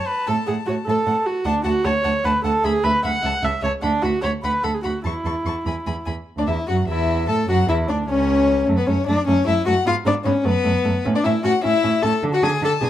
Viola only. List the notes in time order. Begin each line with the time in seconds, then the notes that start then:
0.07 B4
0.28 A4
0.46 G#4
0.66 F#4
0.86 A4
1.26 F#4
1.46 D4
1.65 F#4
1.85 C#5
2.25 B4
2.44 A4
2.65 G#4
2.84 B4
3.05 F#5
3.45 E5
3.63 C#5
3.82 D4
4.02 F#4
4.22 C#5
4.43 B4
4.64 A4
4.74 G#4
4.84 F#4
5.05 E4
6.38 D4
6.49 E4
6.68 F#4
6.88 E4
7.29 A4
7.49 F#4
7.69 E4
7.90 D4
8.09 C#4
8.68 A3
8.88 A3
9.08 A3
9.28 A3
9.46 A3
9.66 A3
9.85 B3
10.05 B3
10.26 B3
10.45 A3
10.64 A3
10.84 A3
11.05 C#4
11.24 C#4
11.44 C#4
11.63 C#4
11.84 C#4
12.04 C#4
12.23 D4
12.43 D4
12.62 D4
12.82 D4